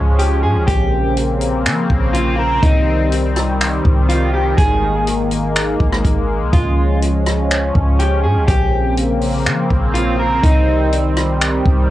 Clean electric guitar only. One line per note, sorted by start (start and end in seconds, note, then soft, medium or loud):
0.19 0.42 G4 medium
0.43 0.66 G#4 medium
0.67 1.13 G4 loud
2.13 2.37 F4 medium
2.39 2.62 A#4 medium
2.63 3.09 D#4 loud
4.09 4.32 F4 medium
4.34 4.57 G4 medium
4.57 5.03 G#4 loud
6.53 6.99 F4 medium
7.99 8.23 G4 medium
8.24 8.47 G#4 medium
8.48 8.94 G4 loud
9.94 10.17 F4 medium
10.19 10.42 A#4 medium
10.43 10.89 D#4 loud